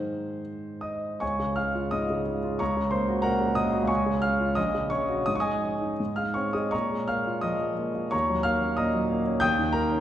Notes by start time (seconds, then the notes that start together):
Already playing: G#2 D#3 G#3 D#4 C5
0.81 D#5 D#6
1.20 C#2 C#5 G#5 C#6
1.40 C#3
1.56 G#3 F5 F6
1.75 F4
1.91 G#2 D#5 D#6
2.10 C#3
2.27 G#3
2.44 F4
2.59 C#2 C#5 A#5 C#6
2.77 C#3
2.91 A#3 C5 C6
3.08 F#4
3.22 A#2 A#4 F#5 A#5
3.41 C#3
3.55 A#3 D#5 D#6
3.73 F#4
3.83 C#2
3.87 C#5 G#5 C#6
4.06 C#3
4.22 C#4 F5 F6
4.40 F4
4.55 A#1 D#5 D#6
4.75 C#3
4.90 C#4 C#5 C#6
5.09 F#4
5.26 G#2 D#6
5.35 C#6
5.40 D#5 G#5 D#6
5.45 G#3
5.64 C#4
5.81 D#4
6.00 G#2
6.16 G#3 F5 F6
6.34 C4 C#5 C#6
6.53 G#4 D#5 D#6
6.71 A#2 C#5 A#5 C#6
6.92 G#3
7.08 A#3 F5 F6
7.27 F4
7.41 F3 D#5 D#6
7.61 G#3
7.78 A#3
7.95 F4
8.11 D#2 C#5 A#5 C#6
8.30 F#3
8.43 A#3 F5 F6
8.62 C#4
8.77 A#2 D#5 A#5 D#6
8.94 F#3
9.11 A#3
9.26 C#4
9.40 D#2 G5 D#6 G6
9.59 D#3
9.73 A#3 A#4 A#5
9.92 C#4